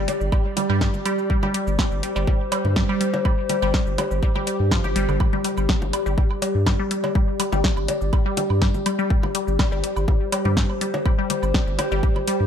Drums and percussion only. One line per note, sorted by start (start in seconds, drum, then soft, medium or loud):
0.08 open hi-hat medium
0.08 cowbell medium
0.08 low bongo soft
0.21 cabasa soft
0.32 kick loud
0.32 cabasa soft
0.32 high woodblock medium
0.57 open hi-hat medium
0.57 low bongo medium
0.70 high woodblock soft
0.81 kick loud
0.81 snare medium
0.94 low bongo soft
0.94 cabasa soft
1.05 open hi-hat medium
1.05 high woodblock medium
1.18 cabasa soft
1.30 kick loud
1.43 low bongo medium
1.43 high woodblock soft
1.54 open hi-hat medium
1.67 cabasa medium
1.79 kick loud
1.79 snare medium
1.79 low bongo soft
1.79 high woodblock medium
1.92 cabasa soft
2.03 open hi-hat medium
2.16 cabasa soft
2.16 high woodblock soft
2.27 kick loud
2.27 low bongo medium
2.52 open hi-hat medium
2.52 cowbell medium
2.52 cabasa soft
2.52 high woodblock medium
2.65 low bongo soft
2.76 kick loud
2.76 snare medium
2.89 high woodblock soft
3.01 open hi-hat medium
3.14 cowbell medium
3.14 low bongo medium
3.14 cabasa soft
3.25 kick loud
3.25 high woodblock medium
3.49 open hi-hat medium
3.49 low bongo soft
3.62 cabasa medium
3.62 high woodblock soft
3.74 kick loud
3.74 snare medium
3.87 cabasa soft
3.98 open hi-hat medium
3.98 cowbell medium
3.98 low bongo medium
3.98 high woodblock medium
4.11 cabasa soft
4.23 kick loud
4.23 cabasa soft
4.36 low bongo soft
4.36 high woodblock soft
4.47 open hi-hat medium
4.47 cabasa soft
4.71 kick loud
4.71 snare loud
4.71 high woodblock medium
4.84 low bongo medium
4.84 cabasa soft
4.96 open hi-hat medium
5.09 cabasa soft
5.09 high woodblock soft
5.20 kick loud
5.20 high woodblock medium
5.33 low bongo soft
5.44 open hi-hat medium
5.57 cabasa medium
5.57 high woodblock soft
5.69 kick loud
5.69 snare medium
5.82 low bongo medium
5.82 cabasa soft
5.93 open hi-hat medium
5.93 high woodblock medium
6.06 cabasa soft
6.18 kick loud
6.18 low bongo soft
6.31 high woodblock soft
6.42 open hi-hat medium
6.42 cowbell medium
6.42 cabasa soft
6.66 kick loud
6.66 snare medium
6.66 low bongo medium
6.66 high woodblock medium
6.91 open hi-hat medium
7.04 cowbell medium
7.04 low bongo soft
7.04 cabasa soft
7.04 high woodblock soft
7.15 kick loud
7.40 open hi-hat loud
7.40 high woodblock medium
7.52 low bongo medium
7.52 cabasa medium
7.64 kick loud
7.64 snare loud
7.77 cabasa soft
7.77 high woodblock soft
7.88 open hi-hat loud
7.88 cowbell medium
7.88 low bongo soft
8.01 cabasa soft
8.13 kick loud
8.13 cabasa soft
8.13 high woodblock medium
8.37 open hi-hat loud
8.37 low bongo medium
8.37 cabasa soft
8.50 high woodblock soft
8.62 kick loud
8.62 snare loud
8.74 low bongo soft
8.74 cabasa soft
8.86 open hi-hat medium
8.86 high woodblock medium
8.99 cabasa soft
9.10 kick loud
9.23 low bongo medium
9.23 high woodblock soft
9.35 open hi-hat loud
9.48 cabasa soft
9.59 kick loud
9.59 snare medium
9.59 low bongo soft
9.59 high woodblock medium
9.72 cabasa soft
9.84 open hi-hat loud
9.97 cabasa soft
9.97 high woodblock soft
10.08 kick loud
10.08 low bongo medium
10.32 open hi-hat loud
10.32 cowbell medium
10.32 cabasa soft
10.32 high woodblock medium
10.45 low bongo soft
10.57 kick loud
10.57 snare medium
10.70 high woodblock soft
10.81 open hi-hat medium
10.94 cowbell medium
10.94 low bongo medium
10.94 cabasa soft
11.06 kick loud
11.06 high woodblock medium
11.30 open hi-hat loud
11.30 low bongo soft
11.43 cabasa soft
11.43 high woodblock soft
11.54 kick loud
11.54 snare medium
11.67 cabasa soft
11.79 open hi-hat loud
11.79 cowbell medium
11.79 low bongo medium
11.79 high woodblock medium
11.92 cabasa soft
12.03 kick loud
12.03 cabasa soft
12.16 low bongo soft
12.16 high woodblock soft
12.28 open hi-hat medium
12.28 cabasa soft